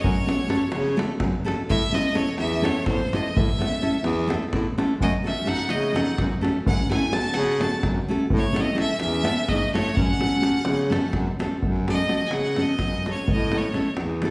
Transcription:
0.01 F#2 C#5, davul low
0.16 davul high
0.26 A3 C#4 F#4 A4, davul high
0.48 A3 C#4 F#4 A4, davul high
0.71 C#3, davul high
0.87 davul high
0.96 A3 C#4 F#4 A4, davul high
1.19 F#2, davul high, davul low
1.34 davul high
1.44 A3 C#4 F#4 A4, davul high
1.68 A2 E5, davul low
1.82 davul high
1.91 A3 C#4 E4 A4 D#5, davul high
2.14 A3 C#4 E4 A4 C#5, davul high
2.36 E2 E5, davul high
2.51 davul high
2.62 A3 C#4 E4 A4 C#5, davul high
2.86 A2 C5, davul high, davul low
3.13 A3 C#4 E4 A4 D#5, davul high
3.36 A2 E5, davul low
3.49 davul high
3.58 A3 C#4 E4 A4, davul high
3.73 davul high
3.82 A3 C#4 E4 A4
3.94 davul high
4.02 E2, davul high
4.17 davul high
4.27 A3 C#4 E4 A4, davul high
4.43 davul high
4.51 A2, davul high, davul low
4.78 A3 C#4 E4 A4, davul high
5.00 F#2 A3 D#5, davul low
5.14 davul high
5.23 A3 C#4 F#4 A4 E5
5.27 C#4, davul high
5.45 A3 C#4 F#4 A4 F#5, davul high
5.49 D#4
5.69 C#3 A3 D#5, davul high
5.83 davul high
5.93 A3 C#4 D#4 F#4 A4 F#5, davul high
6.18 F#2, davul high, davul low
6.32 davul high
6.41 A3 C#4 F#4 A4, davul high
6.66 F#2 C#4 F#5, davul low
6.79 davul high
6.89 A3 C#4 E4 F#4 A4 G#5, davul high
7.11 A3 C#4 F#4 A4 A5, davul high
7.16 F#4
7.34 C#3 C#4 F#5, davul high
7.47 davul high
7.59 A3 C#4 F#4 A4 A5, davul high
7.64 F#4
7.83 F#2, davul high, davul low
7.98 davul high
8.08 A3 C#4 F#4 A4
8.30 A2, davul low
8.36 A3 C#5
8.44 davul high
8.53 A3 C#4 E4 A4, davul high
8.60 C4 D#5
8.75 A3 C#4 E4 A4, davul high
8.80 C#4 E5
9.00 E2 C#4 E5, davul high
9.12 davul high
9.23 A3 C#4 E4 A4, davul high
9.48 G#2 A3 D#5, davul high, davul low
9.63 davul high
9.74 A3 C#4 E4 A4 C#5, davul high
9.95 F#2 C#4 F#5, davul low
10.10 davul high
10.19 A3 C#4 F#4 A4, davul high
10.33 davul high
10.40 A3 C#4 F#4 A4, davul high
10.54 davul high
10.64 C#3, davul high
10.90 A3 C#4 F#4 A4, davul high
11.03 davul high
11.13 F#2, davul high, davul low
11.27 davul high
11.39 A3 C#4 F#4 A4, davul high
11.52 davul high
11.61 F#2, davul low
11.76 davul high
11.88 A3 C#4 F#4 A4 D#5, davul high
11.99 davul high
12.08 A3 C#4 F#4 A4, davul high
12.21 davul high
12.26 C#3 G#5
12.31 F#5, davul high
12.44 davul high
12.56 A3 C#4 F#4 A4, davul high
12.61 D#5
12.68 davul high
12.79 F#2, davul high, davul low
12.93 davul high
13.06 A3 C#4 F#4 A4, davul high
13.11 C#5
13.28 A2, davul low
13.33 D#5
13.40 davul high
13.51 A3 C#4 E4 A4, davul high
13.57 C#5
13.64 davul high
13.73 A3 C#4 E4 A4, davul high
13.86 davul high
13.97 E2, davul high
14.10 davul high
14.22 A3 C#4 E4 A4, davul high

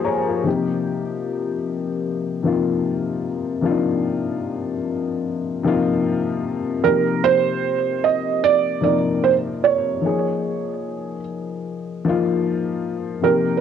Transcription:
Already playing: F3 A#3 D#4 F4 G4 G#4 A#4 C5 D#5 F5 G5 G#5
0.04 G#4 C#5 A#5
0.28 F4 A#4
0.43 C3 F3 A#3 D#4
0.48 G4
2.43 C3 F3 A#3 D#4
2.47 F4
3.61 C3 F3 A#3 D4
3.65 F4
3.71 D#4
5.63 C3 F3 A#3 D#4
5.68 F4
6.83 C3 F3 A#3 D#4 A#4
6.87 G4
7.24 C5
8.04 D#5
8.44 D5
8.81 C3 F3 A#3 D#4 D5
8.85 A#4
9.24 C5
9.64 C#5
10.02 F3 A#3 D#4
10.06 G#4
12.05 F3 A#3 D#4
12.09 F4
13.21 C3 F3 A#3 D#4 A#4
13.26 G4
13.57 B4

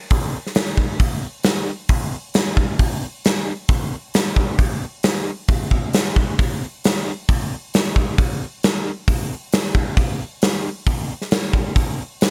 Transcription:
0.10 kick, open hi-hat
0.47 snare
0.55 snare, open hi-hat
0.77 kick
1.00 kick, open hi-hat
1.43 snare, open hi-hat
1.89 kick, open hi-hat
2.34 snare, open hi-hat
2.57 kick
2.79 kick, open hi-hat
3.25 snare, open hi-hat
3.68 kick, open hi-hat
4.14 snare, open hi-hat
4.36 kick
4.59 kick, open hi-hat
5.03 snare, open hi-hat
5.48 kick, open hi-hat
5.71 kick
5.93 snare, open hi-hat
6.16 kick
6.39 kick, open hi-hat
6.84 snare, open hi-hat
7.29 kick, open hi-hat
7.74 snare, open hi-hat
7.96 kick
8.18 kick, open hi-hat
8.63 snare, open hi-hat
9.08 kick, open hi-hat
9.52 snare, open hi-hat
9.75 kick
9.97 kick, open hi-hat
10.42 snare, open hi-hat
10.87 kick, open hi-hat
11.22 snare
11.31 snare, open hi-hat
11.53 kick
11.76 kick, open hi-hat
12.21 snare, open hi-hat

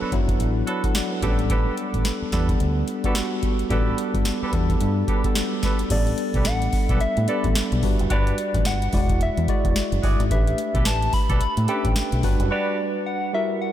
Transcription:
Already playing: F#3 B3 D4 A4
0.01 D4 F#4 A4 B4, muted fingered electric bass stroke
0.12 F#1 F#3 B3 D4 E4, kick, closed hi-hat
0.29 kick, closed hi-hat
0.40 A1, closed hi-hat
0.67 D4 F#4 A4 B4 C#5 A5, closed hi-hat
0.84 A4 F#5, kick, closed hi-hat
0.95 F#4 D5, snare, closed hi-hat
1.12 D4 B4
1.22 A1 G3 B3 C#4 D4 G4 A4 B4, kick, closed hi-hat
1.29 D4
1.39 closed hi-hat
1.49 D4 G4 A4 B4, kick, closed hi-hat
1.77 closed hi-hat
1.94 A1, kick, closed hi-hat
2.05 snare, closed hi-hat
2.22 muted fingered electric bass stroke
2.32 E2 G3 B3 D4 G4 A4 B4, kick, snare, closed hi-hat
2.49 kick, closed hi-hat
2.60 D2, closed hi-hat
2.88 closed hi-hat
3.04 G3 B3 D4 F#4 G4 A4 B4, kick, closed hi-hat
3.15 snare, closed hi-hat
3.43 kick, closed hi-hat
3.59 closed hi-hat
3.70 A1 G3 B3 D4 G4 A4 B4, kick, closed hi-hat
3.98 closed hi-hat
4.14 G1, kick, closed hi-hat
4.25 snare, closed hi-hat
4.42 D4 G4 A4 B4, muted fingered electric bass stroke
4.53 E2 G3 B3 D4 A4, kick, closed hi-hat
4.69 kick, closed hi-hat
4.81 G2, closed hi-hat
5.08 D4 G4 A4 B4, kick, closed hi-hat
5.24 G3 B3 D4 A4, kick, closed hi-hat
5.35 snare, closed hi-hat
5.63 D4 G4 A4 B4, kick, snare, closed hi-hat
5.79 closed hi-hat
5.90 A1 G3 B3 D4 A4 D5, kick, closed hi-hat, crash
6.07 closed hi-hat
6.18 closed hi-hat
6.34 B1 D4 G4 A4 B4, kick, closed hi-hat
6.45 A1 F#5, snare, closed hi-hat
6.62 closed hi-hat
6.73 kick, open hi-hat
6.89 B1 D4 G4 A4 B4, kick, closed hi-hat
7.00 E5, closed hi-hat
7.17 A2, closed hi-hat
7.28 G3 B3 D4 G4 A4 B4 D5, closed hi-hat
7.44 A1, kick, closed hi-hat
7.55 snare, closed hi-hat
7.72 B1, closed hi-hat
7.83 G1 G3 D4 F#4 B4, kick, open hi-hat
7.99 F#1, closed hi-hat
8.10 G1 D4 F#4 G4 B4 D5, kick, closed hi-hat
8.27 closed hi-hat
8.38 closed hi-hat
8.54 A1, kick, closed hi-hat
8.65 G1 F#5, snare, closed hi-hat
8.82 closed hi-hat
8.93 E1 G#3 E4 F#4 D5, kick, open hi-hat
9.09 kick, closed hi-hat
9.21 E5, closed hi-hat
9.37 E2, closed hi-hat
9.48 G#3 E4 F#4 D5, kick, closed hi-hat
9.65 E1, kick, closed hi-hat
9.76 snare, closed hi-hat
9.92 F#1, closed hi-hat
10.03 G1 E4 F#4 G#4 D5, kick, open hi-hat
10.20 G#1, closed hi-hat
10.30 A1 A3 D4 G4 B4 E5, kick, closed hi-hat
10.47 closed hi-hat
10.58 closed hi-hat
10.74 B1 D4 G4 A4 B4, kick, closed hi-hat
10.85 A1 A5, snare, closed hi-hat
11.02 closed hi-hat
11.13 B5, kick, open hi-hat
11.30 B1 D4 G4 A4 B4, kick, closed hi-hat
11.41 B5, muted fingered electric bass stroke, closed hi-hat
11.57 A2, closed hi-hat
11.68 A3 C#4 D4 G4 A4 B4 G5, closed hi-hat
11.75 D4
11.85 A1, kick, closed hi-hat
11.96 snare, closed hi-hat
12.12 B1, closed hi-hat
12.23 G1 G3 D4 F#4 B4, kick, open hi-hat
12.40 F#1, closed hi-hat
12.50 D4 F#4 G4 B4 D5
13.06 F#5
13.33 G3 E4 F#4 A#4 E5
13.62 F#5

